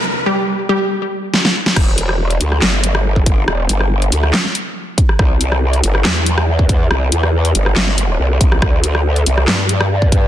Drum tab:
CC |----------------|x---------------|----------------|----------------|
HH |----------------|--x--xx---x---x-|--x--xx---x---x-|--x--xx---x---x-|
CP |----------------|--------x-------|--------x-------|--------x-------|
SD |------------oo-o|r--r---ro--r----|r--r---roo-----r|r--r---ro--r----|
BD |----------------|o------------oo-|--------------o-|o------------oo-|

CC |----------------|----------------|
HH |--x--xx---x---x-|--x--xx---x---x-|
CP |--------x-------|--------x-------|
SD |r--r---roo-----r|r--r---ro--r----|
BD |--------------o-|o------------oo-|